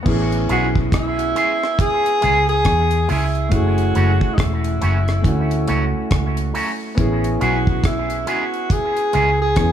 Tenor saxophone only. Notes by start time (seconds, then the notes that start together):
0.52 F#4
0.94 E4
1.81 G#4
2.49 G#4
3.09 E4
3.52 F#4
4.34 D#4
4.39 E4
7.42 F#4
7.85 E4
8.28 F#4
8.72 G#4
9.42 G#4